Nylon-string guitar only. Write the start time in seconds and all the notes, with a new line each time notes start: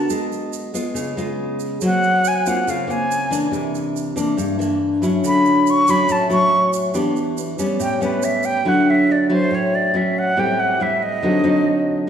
Already playing: B3 F#4 A#4
0.10 G#3
0.74 G#3 B3 F4
0.94 C#3
1.17 G#3 B3 F4
1.82 F#3 A#3 C4
2.46 A#3 C4 F4
2.67 C#3
2.87 A#3 C4 F4
3.31 E3 A#3 D4
3.52 C3
4.16 E3 A#3 D4
4.37 G2
4.59 E3 A#3 D4
5.02 F#3 C#4 E4
5.24 D3
5.89 F#3 C#4 E4
6.09 A2
6.30 F#3 C#4 E4
6.94 E3 B3 D4 G4
7.59 G3 B3 C#4
7.80 A2
8.01 G3 B3 C#4
8.65 D3 F#3 C#4 E4
9.29 F#3 C#4 E4
9.51 A2
9.94 F#3 C#4 E4
10.37 A2 G3 C4 E4
10.80 G3 C4 E4
11.23 D3 F#3 C4 D#4
11.44 F#3 C4 D#4